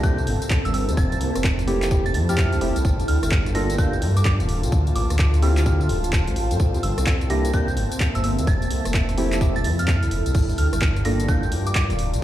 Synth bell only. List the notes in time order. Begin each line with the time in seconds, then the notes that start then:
0.03 G6
0.65 E6
0.74 E6
0.97 A6
2.06 A6
2.14 A6
2.29 F6
3.08 F6
3.55 A#6
3.78 G6
4.17 D6
4.25 D6
4.96 D6
5.43 F6
6.83 E6
7.30 A#6
7.54 G6
8.15 E6
8.24 E6
8.48 A6
9.56 A6
9.64 A6
9.79 F6
10.58 F6
11.05 A#6
11.28 G6
11.67 D6
11.75 D6